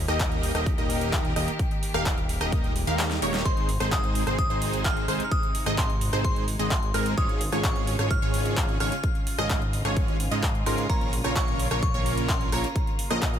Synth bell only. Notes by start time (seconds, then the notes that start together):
3.45 C6
3.92 D#6
4.39 D#6
4.85 F6
5.24 F6
5.31 D#6
5.78 C6
6.25 C6
6.71 C6
6.94 F6
7.18 D#6
7.64 C#6
8.11 F6
8.80 F6
10.66 C6
10.90 A#5
11.36 C#6
11.83 C#6
12.29 C6
12.52 A#5